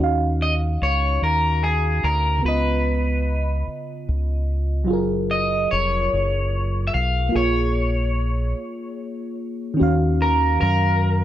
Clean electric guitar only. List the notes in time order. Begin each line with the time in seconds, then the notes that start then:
0.42 D#5
0.83 C#5
1.24 A#4
1.64 G#4
2.04 A#4
2.46 B4
5.31 D#5
5.71 C#5
6.87 E5
6.94 F5
7.36 C#5
10.22 A#4
10.61 A#4